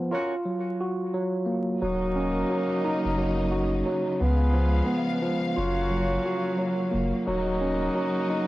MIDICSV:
0, 0, Header, 1, 5, 480
1, 0, Start_track
1, 0, Key_signature, -6, "minor"
1, 0, Tempo, 681818
1, 1277, Time_signature, 4, 2, 24, 8
1, 5964, End_track
2, 0, Start_track
2, 0, Title_t, "Horn section"
2, 0, Program_c, 0, 61
2, 88, Note_on_c, 0, 61, 96
2, 88, Note_on_c, 0, 66, 94
2, 88, Note_on_c, 0, 70, 97
2, 88, Note_on_c, 0, 73, 104
2, 237, Note_off_c, 0, 66, 0
2, 238, Note_off_c, 0, 61, 0
2, 238, Note_off_c, 0, 70, 0
2, 238, Note_off_c, 0, 73, 0
2, 1274, Note_on_c, 0, 58, 91
2, 1274, Note_on_c, 0, 63, 82
2, 1274, Note_on_c, 0, 66, 80
2, 1274, Note_on_c, 0, 70, 99
2, 2687, Note_off_c, 0, 58, 0
2, 2687, Note_off_c, 0, 63, 0
2, 2687, Note_off_c, 0, 66, 0
2, 2687, Note_off_c, 0, 70, 0
2, 2964, Note_on_c, 0, 59, 89
2, 2964, Note_on_c, 0, 65, 78
2, 2964, Note_on_c, 0, 68, 88
2, 2964, Note_on_c, 0, 71, 97
2, 3666, Note_off_c, 0, 59, 0
2, 3666, Note_off_c, 0, 65, 0
2, 3666, Note_off_c, 0, 68, 0
2, 3666, Note_off_c, 0, 71, 0
2, 3915, Note_on_c, 0, 61, 94
2, 3915, Note_on_c, 0, 66, 93
2, 3915, Note_on_c, 0, 73, 103
2, 3916, Note_on_c, 0, 70, 86
2, 4857, Note_off_c, 0, 61, 0
2, 4857, Note_off_c, 0, 66, 0
2, 4857, Note_off_c, 0, 70, 0
2, 4857, Note_off_c, 0, 73, 0
2, 5109, Note_on_c, 0, 63, 87
2, 5109, Note_on_c, 0, 66, 93
2, 5109, Note_on_c, 0, 70, 93
2, 5109, Note_on_c, 0, 75, 95
2, 5964, Note_off_c, 0, 63, 0
2, 5964, Note_off_c, 0, 66, 0
2, 5964, Note_off_c, 0, 70, 0
2, 5964, Note_off_c, 0, 75, 0
2, 5964, End_track
3, 0, Start_track
3, 0, Title_t, "Tine electric piano"
3, 0, Program_c, 1, 4
3, 0, Control_c, 1, 64, 127
3, 0, Note_on_c, 1, 53, 79
3, 0, Note_on_c, 1, 59, 72
3, 72, Note_off_c, 1, 59, 0
3, 77, Note_off_c, 1, 53, 0
3, 80, Note_on_c, 1, 65, 87
3, 85, Control_c, 1, 64, 0
3, 187, Control_c, 1, 64, 127
3, 318, Note_on_c, 1, 54, 71
3, 567, Note_on_c, 1, 66, 80
3, 792, Note_off_c, 1, 54, 0
3, 801, Note_on_c, 1, 54, 86
3, 1027, Note_on_c, 1, 58, 73
3, 1038, Note_off_c, 1, 65, 0
3, 1272, Note_off_c, 1, 54, 0
3, 1272, Note_off_c, 1, 58, 0
3, 1280, Note_on_c, 1, 54, 86
3, 1282, Note_off_c, 1, 66, 0
3, 1287, Control_c, 1, 64, 0
3, 1389, Control_c, 1, 64, 127
3, 1520, Note_on_c, 1, 61, 79
3, 1749, Note_off_c, 1, 54, 0
3, 1758, Note_on_c, 1, 54, 76
3, 2002, Note_on_c, 1, 63, 94
3, 2227, Note_off_c, 1, 54, 0
3, 2235, Note_on_c, 1, 54, 76
3, 2472, Note_on_c, 1, 66, 76
3, 2478, Note_off_c, 1, 61, 0
3, 2707, Note_off_c, 1, 54, 0
3, 2716, Note_on_c, 1, 54, 87
3, 2955, Note_off_c, 1, 66, 0
3, 2956, Note_off_c, 1, 54, 0
3, 2957, Note_on_c, 1, 59, 74
3, 2960, Note_off_c, 1, 63, 0
3, 2967, Control_c, 1, 64, 0
3, 3078, Control_c, 1, 64, 127
3, 3193, Note_on_c, 1, 53, 90
3, 3414, Note_off_c, 1, 59, 0
3, 3422, Note_on_c, 1, 59, 73
3, 3663, Note_off_c, 1, 53, 0
3, 3672, Note_on_c, 1, 53, 77
3, 3910, Note_off_c, 1, 59, 0
3, 3914, Note_off_c, 1, 53, 0
3, 3917, Note_on_c, 1, 65, 90
3, 3926, Control_c, 1, 64, 0
3, 4050, Control_c, 1, 64, 127
3, 4154, Note_on_c, 1, 54, 74
3, 4405, Note_on_c, 1, 66, 82
3, 4629, Note_off_c, 1, 54, 0
3, 4638, Note_on_c, 1, 54, 88
3, 4866, Note_on_c, 1, 58, 73
3, 4877, Note_off_c, 1, 65, 0
3, 5112, Note_off_c, 1, 54, 0
3, 5112, Note_off_c, 1, 58, 0
3, 5120, Note_on_c, 1, 54, 86
3, 5121, Note_off_c, 1, 66, 0
3, 5126, Control_c, 1, 64, 0
3, 5234, Control_c, 1, 64, 127
3, 5358, Note_on_c, 1, 61, 77
3, 5589, Note_off_c, 1, 54, 0
3, 5598, Note_on_c, 1, 54, 74
3, 5842, Note_on_c, 1, 63, 93
3, 5964, Note_off_c, 1, 54, 0
3, 5964, Note_off_c, 1, 61, 0
3, 5964, Note_off_c, 1, 63, 0
3, 5964, End_track
4, 0, Start_track
4, 0, Title_t, "String section"
4, 0, Program_c, 2, 48
4, 1264, Note_on_c, 2, 54, 78
4, 1264, Note_on_c, 2, 63, 94
4, 1265, Note_on_c, 2, 49, 81
4, 1265, Note_on_c, 2, 58, 73
4, 2934, Note_off_c, 2, 54, 0
4, 2934, Note_off_c, 2, 58, 0
4, 2934, Note_off_c, 2, 63, 0
4, 2970, Note_on_c, 2, 56, 79
4, 2970, Note_on_c, 2, 77, 93
4, 2971, Note_on_c, 2, 59, 72
4, 3914, Note_off_c, 2, 56, 0
4, 3914, Note_off_c, 2, 59, 0
4, 3914, Note_on_c, 2, 54, 79
4, 3914, Note_on_c, 2, 58, 77
4, 5083, Note_off_c, 2, 49, 0
4, 5102, Note_off_c, 2, 77, 0
4, 5103, Note_off_c, 2, 54, 0
4, 5124, Note_on_c, 2, 49, 81
4, 5124, Note_on_c, 2, 54, 73
4, 5124, Note_on_c, 2, 63, 94
4, 5964, Note_off_c, 2, 49, 0
4, 5964, Note_off_c, 2, 54, 0
4, 5964, Note_off_c, 2, 58, 0
4, 5964, Note_off_c, 2, 63, 0
4, 5964, End_track
5, 0, Start_track
5, 0, Title_t, "Sub bass"
5, 0, Program_c, 3, 38
5, 1283, Note_on_c, 3, 27, 104
5, 1709, Note_off_c, 3, 27, 0
5, 2149, Note_on_c, 3, 30, 100
5, 2692, Note_off_c, 3, 30, 0
5, 2963, Note_on_c, 3, 37, 95
5, 3389, Note_off_c, 3, 37, 0
5, 3923, Note_on_c, 3, 30, 101
5, 4349, Note_off_c, 3, 30, 0
5, 4883, Note_on_c, 3, 30, 94
5, 5010, Note_off_c, 3, 30, 0
5, 5121, Note_on_c, 3, 27, 108
5, 5548, Note_off_c, 3, 27, 0
5, 5964, End_track
0, 0, End_of_file